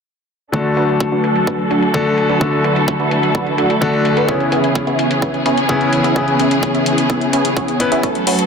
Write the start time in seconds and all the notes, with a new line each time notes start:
0.52 D3 F#3 A3 D4 F#4 A4, kick
0.65 closed hi-hat
0.77 D4 F#4 B4, closed hi-hat
0.89 closed hi-hat
1.00 kick, closed hi-hat
1.12 D4 F#4 B4, closed hi-hat
1.24 closed hi-hat
1.36 closed hi-hat
1.47 D4 F#4 B4, kick, closed hi-hat
1.59 closed hi-hat
1.71 D4 F#4 A4, closed hi-hat
1.82 closed hi-hat
1.94 D3 A3 D4 F#4 A4, kick, closed hi-hat
2.06 closed hi-hat
2.18 closed hi-hat
2.29 D4 F#4 B4, closed hi-hat
2.40 D3 A3 D4 E4 F#4 A4, kick, closed hi-hat
2.53 closed hi-hat
2.64 D4 F#4 B4, closed hi-hat
2.76 closed hi-hat
2.88 kick, closed hi-hat
3.00 D4 F#4 B4, closed hi-hat
3.11 closed hi-hat
3.23 closed hi-hat
3.35 D4 F#4 B4, kick, closed hi-hat
3.47 closed hi-hat
3.58 D4 F#4 A4, closed hi-hat
3.70 closed hi-hat
3.81 D3 A3 D4 F#4 A4, kick, closed hi-hat
3.94 closed hi-hat
4.05 closed hi-hat
4.17 D4 F#4 B4, closed hi-hat
4.27 C#3 E3 B3 C#4 E4 G#4 C#5, kick, closed hi-hat
4.40 closed hi-hat
4.52 B3 C#4 E4 G#4 E5, closed hi-hat
4.64 closed hi-hat
4.75 kick, closed hi-hat
4.87 B3 C#4 E4 G#4 E5, closed hi-hat
4.99 closed hi-hat
5.11 closed hi-hat
5.22 B3 C#4 E4 G#4 E5, kick, closed hi-hat
5.34 closed hi-hat
5.46 B3 C#4 E4 G#4 C#5, closed hi-hat
5.57 closed hi-hat
5.69 C#3 B3 C#4 E4 G#4 C#5, kick, closed hi-hat
5.81 closed hi-hat
5.93 closed hi-hat
6.04 B3 C#4 E4 G#4 E5, closed hi-hat
6.15 C#3 B3 C#4 E4 G#4 C#5, kick, closed hi-hat
6.28 closed hi-hat
6.39 B3 C#4 E4 G#4 E5, closed hi-hat
6.51 closed hi-hat
6.63 kick, closed hi-hat
6.75 B3 C#4 E4 G#4 E5, closed hi-hat
6.86 closed hi-hat
6.98 closed hi-hat
7.10 B3 C#4 E4 G#4 E5, kick, closed hi-hat
7.21 closed hi-hat
7.33 B3 C#4 E4 G#4 C#5, closed hi-hat
7.45 closed hi-hat
7.57 B3 C#4 E4 G#4 C#5, kick, closed hi-hat
7.68 closed hi-hat
7.80 B3 C#4 E4 B4, closed hi-hat
7.92 B3 C#4 E4 G#4 E5, closed hi-hat
8.03 F#3 A3 C#4 F#4 A4, kick, closed hi-hat
8.15 closed hi-hat
8.27 C#4 F#4 B4, open hi-hat
8.39 closed hi-hat